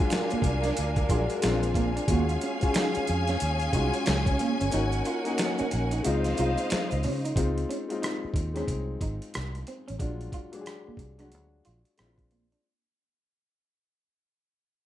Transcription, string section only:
0.00 2.06 D4 medium
0.00 2.06 A#4 medium
0.00 1.40 F5 medium
0.00 1.41 G#5 medium
1.42 4.68 F5 medium
1.42 6.00 G#5 loud
2.08 6.00 C#4 medium
2.08 4.69 G#4 medium
4.73 6.03 A#4 medium
4.73 6.03 F#5 medium
6.05 7.35 C#3 medium
6.05 7.35 C5 medium
6.05 7.35 D#5 medium
6.05 7.35 F5 medium

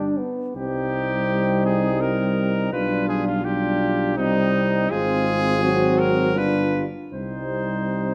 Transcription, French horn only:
0.00 0.20 D4 medium
0.18 0.56 B3 medium
0.57 2.69 C4 medium
2.73 3.43 D4 medium
3.45 4.18 D4 medium
4.17 4.91 C4 medium
4.92 5.62 C4 medium
5.63 6.38 C4 medium
6.37 6.86 D4 medium
7.13 8.14 C4 soft

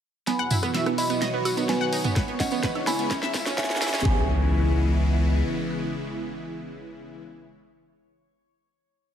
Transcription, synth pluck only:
0.27 0.34 B3 medium
0.39 0.46 F#5 loud
0.51 0.58 E4 medium
0.63 0.65 B3 loud
0.74 0.81 E5 medium
0.86 0.93 B3 medium
0.98 1.03 E4 medium
1.10 1.13 B3 loud
1.22 1.26 D#5 loud
1.34 1.38 B3 medium
1.45 1.50 F#4 medium
1.57 1.62 B3 medium
1.69 1.76 B3 medium
1.81 1.87 F#5 loud
1.92 1.99 D#4 medium
2.04 2.07 B3 loud
2.16 2.23 B4 medium
2.28 2.35 B3 medium
2.40 2.44 C#4 medium
2.52 2.54 B3 loud
2.63 2.68 B4 loud
2.75 2.80 B3 medium
2.87 2.92 E4 medium
2.99 3.03 B3 medium
3.11 3.17 C#4 medium
3.23 3.29 E5 loud
3.34 3.41 E4 medium
3.46 3.49 C#4 loud
3.58 3.65 C#5 medium
3.70 3.76 C#4 medium
3.82 3.86 E4 medium
3.94 3.96 C#4 loud
4.05 4.27 B3 medium

